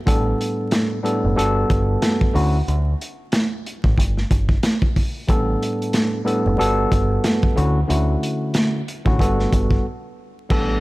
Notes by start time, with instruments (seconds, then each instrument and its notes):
0.06 picked electric bass A1, tine electric piano A2 G3 B3 D4 A4, kick, closed hi-hat
0.41 closed hi-hat
0.71 snare, closed hi-hat
1.03 tine electric piano A2 G3 B3 D4 A4, closed hi-hat
1.24 picked electric bass F#1
1.35 picked electric bass G1, tine electric piano G2 G3 B3 F#4 A4, closed hi-hat
1.70 picked electric bass G1, kick, closed hi-hat
2.02 snare, closed hi-hat
2.21 kick
2.33 picked electric bass D2, tine electric piano D3 A3 C#4 E4 F#4, open hi-hat
2.68 picked electric bass D2, closed hi-hat
3.01 closed hi-hat
3.32 snare, closed hi-hat
3.66 closed hi-hat
3.84 picked electric bass A1, kick
3.98 picked electric bass G1, kick, closed hi-hat
4.17 snare
4.31 picked electric bass G1, kick, closed hi-hat
4.49 kick
4.63 snare, closed hi-hat
4.82 kick
4.96 kick, open hi-hat
5.27 picked electric bass A1, tine electric piano A2 G3 B3 D4 A4, kick, closed hi-hat
5.62 closed hi-hat
5.82 closed hi-hat
5.93 snare, closed hi-hat
6.24 tine electric piano A2 G3 B3 D4 A4, closed hi-hat
6.46 picked electric bass F#1
6.57 picked electric bass G1, tine electric piano G2 G3 B3 F#4 A4, closed hi-hat
6.92 picked electric bass G1, kick, closed hi-hat
7.24 snare, closed hi-hat
7.43 kick
7.55 picked electric bass D2, tine electric piano D3 A3 C#4 E4 F#4, closed hi-hat
7.88 picked electric bass D2, tine electric piano D3 A3 C#4 E4 F#4, closed hi-hat
8.23 closed hi-hat
8.54 snare, closed hi-hat
8.88 closed hi-hat
9.05 picked electric bass A1, tine electric piano D3 A3 C#4 E4 F#4, kick
9.19 picked electric bass G1, tine electric piano G2 G3 B3 F#4 A4, kick, closed hi-hat
9.39 snare
9.52 picked electric bass G1, kick, closed hi-hat
9.71 kick
10.49 picked electric bass A1, tine electric piano A2 G3 B3 D4 A4, kick, crash